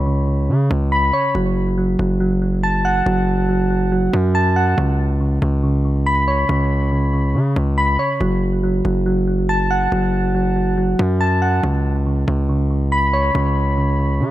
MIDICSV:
0, 0, Header, 1, 3, 480
1, 0, Start_track
1, 0, Key_signature, 3, "minor"
1, 0, Tempo, 428571
1, 1511, Time_signature, 4, 2, 24, 8
1, 16026, End_track
2, 0, Start_track
2, 0, Title_t, "Synth keys"
2, 0, Program_c, 0, 88
2, 0, Note_on_c, 0, 73, 88
2, 0, Note_on_c, 0, 83, 98
2, 70, Note_on_c, 0, 49, 87
2, 297, Note_off_c, 0, 49, 0
2, 310, Note_on_c, 0, 49, 82
2, 536, Note_off_c, 0, 49, 0
2, 550, Note_on_c, 0, 49, 89
2, 551, Note_off_c, 0, 83, 0
2, 777, Note_off_c, 0, 49, 0
2, 790, Note_off_c, 0, 73, 0
2, 790, Note_on_c, 0, 49, 76
2, 1030, Note_on_c, 0, 83, 96
2, 1270, Note_on_c, 0, 73, 87
2, 1510, Note_off_c, 0, 49, 0
2, 1510, Note_off_c, 0, 73, 0
2, 1510, Note_off_c, 0, 83, 0
2, 1511, Note_on_c, 0, 54, 92
2, 1978, Note_off_c, 0, 54, 0
2, 1991, Note_on_c, 0, 54, 86
2, 2217, Note_off_c, 0, 54, 0
2, 2231, Note_on_c, 0, 54, 77
2, 2455, Note_off_c, 0, 54, 0
2, 2469, Note_on_c, 0, 54, 95
2, 2696, Note_off_c, 0, 54, 0
2, 2709, Note_on_c, 0, 54, 75
2, 2951, Note_on_c, 0, 81, 100
2, 3190, Note_on_c, 0, 78, 95
2, 3416, Note_off_c, 0, 54, 0
2, 3430, Note_on_c, 0, 54, 98
2, 3897, Note_off_c, 0, 54, 0
2, 3910, Note_on_c, 0, 54, 89
2, 4136, Note_off_c, 0, 54, 0
2, 4150, Note_on_c, 0, 54, 75
2, 4376, Note_off_c, 0, 54, 0
2, 4389, Note_on_c, 0, 54, 89
2, 4391, Note_off_c, 0, 81, 0
2, 4617, Note_off_c, 0, 54, 0
2, 4631, Note_off_c, 0, 78, 0
2, 4631, Note_on_c, 0, 54, 79
2, 4870, Note_on_c, 0, 81, 103
2, 5109, Note_on_c, 0, 78, 79
2, 5350, Note_off_c, 0, 78, 0
2, 5350, Note_off_c, 0, 81, 0
2, 5350, Note_on_c, 0, 49, 94
2, 5351, Note_off_c, 0, 54, 0
2, 5817, Note_off_c, 0, 49, 0
2, 5830, Note_on_c, 0, 49, 80
2, 6057, Note_off_c, 0, 49, 0
2, 6070, Note_on_c, 0, 49, 77
2, 6297, Note_off_c, 0, 49, 0
2, 6310, Note_on_c, 0, 49, 93
2, 6538, Note_off_c, 0, 49, 0
2, 6552, Note_on_c, 0, 49, 77
2, 6792, Note_on_c, 0, 83, 98
2, 7030, Note_on_c, 0, 73, 85
2, 7256, Note_off_c, 0, 49, 0
2, 7270, Note_on_c, 0, 49, 95
2, 7736, Note_off_c, 0, 49, 0
2, 7750, Note_on_c, 0, 49, 88
2, 7977, Note_off_c, 0, 49, 0
2, 7991, Note_on_c, 0, 49, 87
2, 8216, Note_off_c, 0, 49, 0
2, 8230, Note_on_c, 0, 49, 87
2, 8231, Note_off_c, 0, 83, 0
2, 8457, Note_off_c, 0, 49, 0
2, 8471, Note_off_c, 0, 73, 0
2, 8471, Note_on_c, 0, 49, 78
2, 8710, Note_on_c, 0, 83, 96
2, 8950, Note_on_c, 0, 73, 85
2, 9190, Note_off_c, 0, 83, 0
2, 9191, Note_off_c, 0, 49, 0
2, 9191, Note_off_c, 0, 73, 0
2, 9191, Note_on_c, 0, 54, 90
2, 9657, Note_off_c, 0, 54, 0
2, 9671, Note_on_c, 0, 54, 83
2, 9897, Note_off_c, 0, 54, 0
2, 9910, Note_on_c, 0, 54, 76
2, 10136, Note_off_c, 0, 54, 0
2, 10149, Note_on_c, 0, 54, 93
2, 10376, Note_off_c, 0, 54, 0
2, 10389, Note_on_c, 0, 54, 77
2, 10631, Note_on_c, 0, 81, 103
2, 10870, Note_on_c, 0, 78, 94
2, 11097, Note_off_c, 0, 54, 0
2, 11111, Note_on_c, 0, 54, 100
2, 11576, Note_off_c, 0, 54, 0
2, 11590, Note_on_c, 0, 54, 91
2, 11816, Note_off_c, 0, 54, 0
2, 11830, Note_on_c, 0, 54, 81
2, 12056, Note_off_c, 0, 54, 0
2, 12069, Note_on_c, 0, 54, 88
2, 12071, Note_off_c, 0, 81, 0
2, 12298, Note_off_c, 0, 54, 0
2, 12310, Note_off_c, 0, 78, 0
2, 12311, Note_on_c, 0, 54, 81
2, 12550, Note_on_c, 0, 81, 104
2, 12789, Note_on_c, 0, 78, 83
2, 13030, Note_off_c, 0, 78, 0
2, 13030, Note_on_c, 0, 49, 92
2, 13031, Note_off_c, 0, 54, 0
2, 13031, Note_off_c, 0, 81, 0
2, 13497, Note_off_c, 0, 49, 0
2, 13511, Note_on_c, 0, 49, 80
2, 13737, Note_off_c, 0, 49, 0
2, 13750, Note_on_c, 0, 49, 76
2, 13976, Note_off_c, 0, 49, 0
2, 13990, Note_on_c, 0, 49, 95
2, 14217, Note_off_c, 0, 49, 0
2, 14230, Note_on_c, 0, 49, 79
2, 14471, Note_on_c, 0, 83, 96
2, 14710, Note_on_c, 0, 73, 85
2, 14936, Note_off_c, 0, 49, 0
2, 14949, Note_on_c, 0, 49, 94
2, 15416, Note_off_c, 0, 49, 0
2, 15430, Note_on_c, 0, 49, 90
2, 15657, Note_off_c, 0, 49, 0
2, 15671, Note_on_c, 0, 49, 82
2, 15897, Note_off_c, 0, 49, 0
2, 15910, Note_on_c, 0, 49, 92
2, 15911, Note_off_c, 0, 83, 0
2, 16026, Note_off_c, 0, 49, 0
2, 16026, Note_off_c, 0, 73, 0
2, 16026, End_track
3, 0, Start_track
3, 0, Title_t, "808-style bass"
3, 0, Program_c, 1, 38
3, 0, Note_on_c, 1, 37, 103
3, 550, Note_on_c, 1, 49, 100
3, 567, Note_off_c, 1, 37, 0
3, 778, Note_off_c, 1, 49, 0
3, 791, Note_on_c, 1, 37, 102
3, 1252, Note_off_c, 1, 37, 0
3, 1510, Note_on_c, 1, 30, 105
3, 2202, Note_off_c, 1, 30, 0
3, 2230, Note_on_c, 1, 30, 103
3, 3386, Note_off_c, 1, 30, 0
3, 3430, Note_on_c, 1, 30, 114
3, 4586, Note_off_c, 1, 30, 0
3, 4631, Note_on_c, 1, 42, 109
3, 5322, Note_off_c, 1, 42, 0
3, 5351, Note_on_c, 1, 37, 109
3, 6042, Note_off_c, 1, 37, 0
3, 6070, Note_on_c, 1, 37, 103
3, 7226, Note_off_c, 1, 37, 0
3, 7270, Note_on_c, 1, 37, 105
3, 8230, Note_on_c, 1, 49, 98
3, 8247, Note_off_c, 1, 37, 0
3, 8459, Note_off_c, 1, 49, 0
3, 8470, Note_on_c, 1, 37, 106
3, 8931, Note_off_c, 1, 37, 0
3, 9191, Note_on_c, 1, 30, 108
3, 9882, Note_off_c, 1, 30, 0
3, 9910, Note_on_c, 1, 30, 107
3, 11066, Note_off_c, 1, 30, 0
3, 11110, Note_on_c, 1, 30, 109
3, 12266, Note_off_c, 1, 30, 0
3, 12312, Note_on_c, 1, 42, 103
3, 13002, Note_off_c, 1, 42, 0
3, 13030, Note_on_c, 1, 37, 111
3, 13722, Note_off_c, 1, 37, 0
3, 13750, Note_on_c, 1, 37, 103
3, 14906, Note_off_c, 1, 37, 0
3, 14951, Note_on_c, 1, 37, 101
3, 15911, Note_on_c, 1, 49, 99
3, 15928, Note_off_c, 1, 37, 0
3, 16026, Note_off_c, 1, 49, 0
3, 16026, End_track
0, 0, End_of_file